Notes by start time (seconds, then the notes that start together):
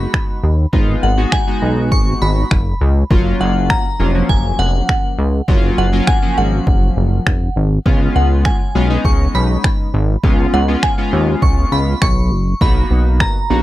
Already playing: G#3 B3 D#4 F#4 B5
0.14 finger snap, kick
0.43 D#2
0.73 G#1 G#3 B3 D#4 F4, kick
1.03 G#1 F#5
1.17 G#3 B3 D#4 F#4
1.32 G#5, finger snap, kick
1.47 G#3 B3 D#4 F#4
1.62 B1
1.92 G#1 C#6, kick
2.21 G#1 B5
2.51 F#1, finger snap, kick
2.81 C#2
3.10 F#1 F#3 A#3 C#4 F4, kick
3.40 F#1 F#5
3.70 A#5, finger snap, kick
3.99 F1 F#3 A#3 C#4 F4
4.14 F3 F#3 A#3 C#4
4.29 F#1 G#5, kick
4.59 F1 F#5
4.89 finger snap, kick
5.19 C#2
5.48 F#1 F#3 A#3 C#4 F4, kick
5.78 F#1 F#5
5.92 F#3 A#3 C#4 F4
6.07 G#5, finger snap, kick
6.22 F3 F#3 A#3 C#4
6.37 G#1 F#5
6.67 F#1, kick
6.97 F#1
7.27 F1, finger snap, kick
7.56 G#1
7.86 C#2 G#3 B3 C#4 F4, kick
8.16 C#2 F#5
8.45 G#5, finger snap, kick
8.75 B1 G#3 B3 C#4 F4
8.90 G#3 B3 C#4 D#4
9.05 C#2 C#6, kick
9.35 B1 B5
9.64 finger snap, kick
9.94 G#1
10.23 C#2 G#3 B3 C#4 F4, kick
10.53 C#2 F#5
10.68 G#3 B3 C#4 F4
10.83 G#5, finger snap, kick
10.98 G#3 B3 C#4 F4
11.13 D#2
11.42 C#2 C#6, kick
11.72 C#2 B5
12.02 B1 C#6, finger snap, kick
12.31 F#1
12.61 B1 A#3 B3 D#4 F#4 B5, kick
12.91 B1
13.20 A#5, finger snap, kick
13.50 A#1 A#3 B3 D#4 F#4